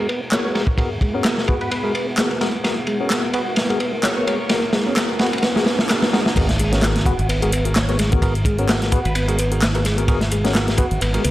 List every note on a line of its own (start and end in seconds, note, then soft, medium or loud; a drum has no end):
0.00 6.33 B3 medium
0.00 6.33 G#4 medium
0.00 2.61 A#4 medium
0.00 6.33 F#5 medium
0.00 riser medium
0.09 0.21 B3 medium
0.09 ride medium
0.32 0.53 B3 medium
0.32 0.53 F#4 medium
0.32 0.53 G#4 medium
0.32 0.53 A#4 medium
0.32 0.40 C#5 medium
0.32 snare loud
0.32 clap loud
0.32 ride medium
0.45 0.54 B3 medium
0.45 0.51 C#5 medium
0.55 0.67 G#3 medium
0.55 0.61 B3 medium
0.55 0.61 F#4 medium
0.55 0.61 G#4 medium
0.55 0.61 A#4 loud
0.55 snare soft
0.55 ride medium
0.67 kick medium
0.78 0.88 B3 medium
0.78 0.88 F#4 medium
0.78 0.88 G#4 medium
0.78 0.88 A#4 loud
0.78 kick loud
0.78 ride medium
1.01 1.14 G#3 loud
1.01 kick medium
1.01 ride medium
1.14 1.46 B3 medium
1.14 1.24 C#4 medium
1.14 1.45 F#4 medium
1.14 1.46 G#4 medium
1.14 1.46 A#4 loud
1.24 snare loud
1.24 clap loud
1.24 ride medium
1.38 snare soft
1.48 1.54 B3 medium
1.48 1.54 F#4 medium
1.48 1.70 F#4 medium
1.48 1.54 G#4 medium
1.48 1.54 B4 medium
1.48 kick medium
1.48 ride medium
1.61 1.68 B4 medium
1.61 ride soft
1.71 1.83 B3 medium
1.71 1.80 B4 medium
1.71 ride medium
1.84 1.93 G#3 medium
1.84 1.92 B3 medium
1.84 1.92 F#4 medium
1.84 1.92 G#4 medium
1.84 1.92 A#4 loud
1.94 2.07 B3 loud
1.94 ride medium
2.17 2.39 B3 medium
2.17 2.38 F#4 medium
2.17 2.38 G#4 medium
2.17 2.39 A#4 medium
2.17 snare loud
2.17 clap loud
2.17 ride medium
2.31 2.40 B3 medium
2.31 ride soft
2.41 2.53 G#3 medium
2.41 2.47 B3 medium
2.41 2.47 F#4 medium
2.41 2.47 G#4 medium
2.41 2.47 A#4 loud
2.41 snare soft
2.41 ride medium
2.64 2.74 B3 medium
2.64 2.74 F#4 medium
2.64 2.74 G#4 medium
2.64 2.74 A#4 loud
2.64 6.33 A#4 medium
2.64 snare soft
2.64 ride medium
2.87 3.00 G#3 loud
2.87 ride medium
3.00 3.32 B3 medium
3.00 3.10 C#4 medium
3.00 3.32 F#4 medium
3.00 3.32 G#4 medium
3.00 3.32 A#4 medium
3.10 snare medium
3.10 clap loud
3.10 ride medium
3.33 3.40 B3 medium
3.33 3.56 F#4 medium
3.33 3.40 F#4 medium
3.33 3.40 G#4 medium
3.33 3.40 B4 loud
3.33 ride medium
3.56 3.69 B3 medium
3.56 snare medium
3.56 ride medium
3.70 3.79 G#3 medium
3.70 3.78 B3 loud
3.70 3.78 F#4 medium
3.70 3.78 G#4 medium
3.70 3.78 A#4 loud
3.70 ride soft
3.80 3.93 B3 loud
3.80 ride medium
4.03 4.25 B3 medium
4.03 4.25 F#4 medium
4.03 4.25 G#4 medium
4.03 4.25 A#4 medium
4.03 4.12 C#5 medium
4.03 snare medium
4.03 clap loud
4.03 ride medium
4.16 4.26 B3 medium
4.16 4.23 C#5 medium
4.27 4.39 G#3 medium
4.27 4.33 B3 medium
4.27 4.33 F#4 medium
4.27 4.33 G#4 medium
4.27 4.33 A#4 loud
4.27 4.35 C#5 medium
4.27 ride medium
4.40 4.47 C#5 medium
4.49 4.60 B3 medium
4.49 4.60 F#4 medium
4.49 4.60 G#4 medium
4.49 4.60 A#4 loud
4.49 snare medium
4.49 ride medium
4.73 4.86 G#3 loud
4.73 snare medium
4.73 ride medium
4.86 5.18 B3 medium
4.86 4.96 C#4 medium
4.86 5.18 F#4 medium
4.86 5.18 G#4 medium
4.86 5.18 A#4 loud
4.96 snare medium
4.96 clap loud
4.96 ride medium
5.19 5.26 B3 medium
5.19 5.26 F#4 medium
5.19 5.42 F#4 medium
5.19 5.26 G#4 medium
5.19 5.26 B4 loud
5.19 snare medium
5.19 ride medium
5.26 ride medium
5.33 ride medium
5.38 ride medium
5.43 5.55 B3 medium
5.43 snare medium
5.43 ride medium
5.56 5.65 G#3 medium
5.56 5.64 B3 loud
5.56 5.64 F#4 medium
5.56 5.64 G#4 medium
5.56 5.64 A#4 loud
5.56 snare medium
5.66 5.79 B3 loud
5.66 snare medium
5.66 ride medium
5.79 snare medium
5.89 6.10 B3 medium
5.89 6.10 F#4 medium
5.89 6.10 G#4 medium
5.89 6.10 A#4 medium
5.89 snare loud
5.89 clap loud
5.89 ride medium
6.02 6.12 B3 medium
6.02 snare medium
6.02 ride soft
6.13 6.25 G#3 medium
6.13 6.19 B3 loud
6.13 6.19 F#4 medium
6.13 6.19 G#4 medium
6.13 6.19 A#4 loud
6.13 snare loud
6.13 ride medium
6.26 snare loud
6.36 7.11 G#1 loud
6.36 6.46 B3 medium
6.36 6.46 F#4 medium
6.36 6.46 G#4 medium
6.36 6.46 A#4 loud
6.36 kick loud
6.36 closed hi-hat soft
6.36 crash medium
6.36 ride loud
6.36 sub drop medium
6.49 snare soft
6.49 closed hi-hat soft
6.59 6.72 G#3 loud
6.59 closed hi-hat medium
6.59 ride medium
6.72 7.04 B3 medium
6.72 6.82 C#4 medium
6.72 7.04 F#4 medium
6.72 7.04 G#4 medium
6.72 7.04 A#4 loud
6.72 snare soft
6.72 closed hi-hat soft
6.82 snare loud
6.82 clap loud
6.82 closed hi-hat soft
6.82 ride medium
6.96 snare medium
6.96 closed hi-hat soft
7.06 7.12 B3 medium
7.06 7.12 F#4 medium
7.06 7.28 F#4 medium
7.06 7.12 G#4 medium
7.06 7.12 B4 loud
7.06 kick medium
7.06 closed hi-hat medium
7.06 ride medium
7.19 8.97 G#1 medium
7.19 closed hi-hat soft
7.29 7.41 B3 medium
7.29 closed hi-hat soft
7.29 ride medium
7.42 7.52 G#3 medium
7.42 7.50 B3 loud
7.42 7.50 F#4 medium
7.42 7.50 G#4 medium
7.42 7.50 A#4 loud
7.42 closed hi-hat soft
7.42 ride soft
7.52 7.65 B3 loud
7.52 closed hi-hat medium
7.52 ride medium
7.65 7.73 B3 medium
7.65 7.73 F#4 medium
7.65 7.73 G#4 medium
7.65 7.73 A#4 medium
7.65 closed hi-hat soft
7.76 7.84 C#5 medium
7.76 snare loud
7.76 clap loud
7.76 closed hi-hat soft
7.76 ride medium
7.89 7.94 B3 medium
7.89 7.98 B3 medium
7.89 7.94 F#4 medium
7.89 7.94 G#4 medium
7.89 7.94 A#4 medium
7.89 7.96 C#5 medium
7.89 closed hi-hat soft
7.99 8.11 G#3 medium
7.99 snare soft
7.99 closed hi-hat medium
7.99 ride medium
8.12 8.20 B3 medium
8.12 8.20 F#4 medium
8.12 8.20 G#4 medium
8.12 8.20 A#4 loud
8.12 kick medium
8.12 closed hi-hat soft
8.22 8.32 B3 medium
8.22 8.32 F#4 medium
8.22 8.32 G#4 medium
8.22 8.32 A#4 loud
8.22 kick loud
8.22 closed hi-hat soft
8.22 ride medium
8.35 closed hi-hat soft
8.45 8.58 G#3 loud
8.45 kick medium
8.45 closed hi-hat medium
8.45 ride medium
8.59 8.90 B3 medium
8.59 8.68 C#4 medium
8.59 8.90 F#4 medium
8.59 8.90 G#4 medium
8.59 8.90 A#4 loud
8.59 closed hi-hat soft
8.69 snare loud
8.69 clap loud
8.69 closed hi-hat soft
8.69 ride medium
8.82 snare soft
8.82 closed hi-hat soft
8.92 8.98 B3 medium
8.92 8.98 F#4 medium
8.92 9.14 F#4 medium
8.92 8.98 G#4 medium
8.92 8.98 B4 loud
8.92 kick medium
8.92 closed hi-hat medium
8.92 ride medium
9.05 10.83 G#1 medium
9.05 9.12 B4 medium
9.05 closed hi-hat soft
9.05 ride soft
9.15 9.27 B3 medium
9.15 9.24 B4 medium
9.15 closed hi-hat soft
9.15 ride medium
9.28 9.38 G#3 medium
9.28 9.36 B3 loud
9.28 9.36 F#4 medium
9.28 9.36 G#4 medium
9.28 9.36 A#4 loud
9.28 closed hi-hat soft
9.39 9.51 B3 loud
9.39 closed hi-hat medium
9.39 ride medium
9.52 9.60 B3 medium
9.52 9.60 F#4 medium
9.52 9.60 G#4 medium
9.52 9.60 A#4 medium
9.52 closed hi-hat soft
9.62 snare loud
9.62 clap loud
9.62 closed hi-hat soft
9.62 ride medium
9.75 9.80 B3 medium
9.75 9.84 B3 medium
9.75 9.80 F#4 medium
9.75 9.80 G#4 medium
9.75 9.80 A#4 loud
9.75 closed hi-hat soft
9.75 ride soft
9.85 9.97 G#3 medium
9.85 snare soft
9.85 closed hi-hat medium
9.85 ride medium
9.98 10.06 B3 medium
9.98 10.06 F#4 medium
9.98 10.06 G#4 medium
9.98 10.06 A#4 loud
9.98 closed hi-hat soft
10.08 10.18 B3 medium
10.08 10.18 F#4 medium
10.08 10.18 G#4 medium
10.08 10.18 A#4 loud
10.08 kick loud
10.08 closed hi-hat soft
10.08 ride medium
10.21 snare soft
10.21 closed hi-hat soft
10.32 10.44 G#3 loud
10.32 closed hi-hat medium
10.32 ride medium
10.44 10.76 B3 medium
10.44 10.54 C#4 medium
10.44 10.76 F#4 medium
10.44 10.76 G#4 medium
10.44 10.76 A#4 loud
10.44 snare soft
10.44 closed hi-hat soft
10.55 snare loud
10.55 clap loud
10.55 closed hi-hat soft
10.55 ride medium
10.68 snare medium
10.68 closed hi-hat soft
10.77 10.84 B3 medium
10.77 10.84 F#4 medium
10.77 11.00 F#4 medium
10.77 10.84 G#4 medium
10.77 10.84 B4 loud
10.77 kick medium
10.77 closed hi-hat medium
10.77 ride medium
10.91 10.98 G#1 medium
10.91 closed hi-hat soft
11.01 11.17 G#1 medium
11.01 11.13 B3 medium
11.01 closed hi-hat soft
11.01 ride medium
11.14 11.24 G#3 medium
11.14 11.22 B3 loud
11.14 11.22 F#4 medium
11.14 11.22 G#4 medium
11.14 11.22 A#4 loud
11.14 closed hi-hat soft
11.14 ride soft
11.24 11.31 C#2 loud
11.24 11.31 B3 loud
11.24 closed hi-hat medium
11.24 ride medium